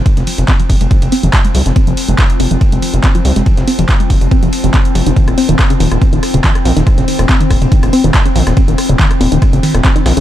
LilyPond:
<<
  \new Staff \with { instrumentName = "Synth drone" } { \clef bass \time 4/4 \key f \minor \tempo 4 = 141 <f c'>1~ | <f c'>1~ | <f c'>1~ | <f c'>1~ |
<f c'>1~ | <f c'>1 | }
  \new Staff \with { instrumentName = "Synth arpeggio sound" } { \clef bass \time 4/4 \key f \minor r16 aes16 f16 r16 c'16 f16 r16 aes16 f16 r16 c'16 f16 r16 aes16 f16 r16 | c'16 f16 r16 aes16 f16 r16 c'16 f16 r16 aes16 f16 r16 c'16 f16 r16 aes16 | f16 r16 c'16 f16 r16 aes16 f16 r16 c'16 f16 r16 f16 c'16 r16 f16 ees16 | ees16 r16 c'16 ees16 r16 des16 ees16 r16 c'16 ees16 r16 des16 ees16 r16 c'16 ees16 |
r16 des16 ees16 r16 c'16 ees16 r16 des16 ees16 r16 c'16 ees16 r16 des16 ees16 r16 | c'16 ees16 r16 des16 ees16 r16 c'16 ees16 r16 des16 ees16 r16 c'16 ees16 r16 des16 | }
  \new Staff \with { instrumentName = "Analog synth bass" } { \clef bass \time 4/4 \key f \minor r16 f,,16 r16 f,,16 r8 f,,16 f,,16 r16 f,,16 r16 f,,16 r8 c,16 f,,16 | r16 f,,16 r16 f,,16 r8 f,,16 f,,16 r16 f,,16 r16 f,,16 r8 c,16 f,,16 | r16 f,,16 r16 f,,16 r8 f,,16 f,,16 r16 f,,16 r16 f,,16 r8 f,,16 f,,16 | r16 ees,,16 r16 ees,,16 r8 ees,,16 ees,,16 r16 ees,,16 r16 ees,,16 r8 bes,,16 ees,,16 |
r16 ees,,16 r16 ees,,16 r8 ees,,16 ees,,16 r16 ees,,16 r16 ees,,16 r8 bes,,16 ees,,16 | r16 ees,,16 r16 ees,,16 r8 ees,,16 ees,,16 r16 ees,,16 r16 ees,,16 r8 bes,,16 ees,,16 | }
  \new DrumStaff \with { instrumentName = "Drums" } \drummode { \time 4/4 <hh bd cymr>16 <hh sn>16 <hho cymr>16 <hh cymr>16 <hc hh bd cymr sn>16 hh16 <hho bd cymr>16 <hh cymr>16 <hh bd cymr>16 <hh cymr>16 <hho cymr>16 hh16 <hc hh bd cymr sn>16 hh16 <hho cymr>16 <hh sn>16 | <hh bd cymr>16 hh16 <hho cymr>16 hh16 <hc hh bd cymr sn>16 hh16 <hho cymr>16 hh16 <hh bd cymr>16 hh16 <hho cymr>16 hh16 <hc hh bd cymr sn>16 hh16 <hho cymr>16 <hh sn>16 | <hh bd cymr>16 <hh sn>16 <hho cymr>16 <hh cymr>16 <hc hh bd cymr sn>16 hh16 <hho bd cymr>16 <hh cymr>16 <hh bd cymr>16 <hh cymr>16 <hho cymr>16 hh16 <hc hh bd cymr sn>16 hh16 <hho cymr>16 hh16 | <hh bd cymr>16 <hh ss>16 <hho cymr>16 hh16 <hc hh bd cymr ss sn>16 hh16 <hho cymr>16 <hh ss>16 <hh bd cymr>16 hh16 <hho cymr ss>16 hh16 <hc hh bd cymr sn>16 <hh ss>16 <hho cymr>16 <hh sn>16 |
<hh bd cymr ss>16 <hh sn>16 <hho cymr>16 <hh cymr ss>16 <hc hh bd cymr sn>16 hh16 <hho bd cymr ss>16 <hh cymr>16 <hh bd cymr>16 <hh cymr ss>16 <hho cymr>16 hh16 <hc hh bd cymr ss sn>16 hh16 <hho cymr>16 <hh ss sn>16 | <hh bd cymr>16 hh16 <hho cymr ss>16 hh16 <hc hh bd cymr sn>16 <hh ss>16 <hho cymr>16 hh16 <hh bd cymr ss>16 hh16 <hho cymr>16 <hh ss>16 <hc hh bd cymr sn>16 hh16 <hho cymr ss sn>16 hh16 | }
>>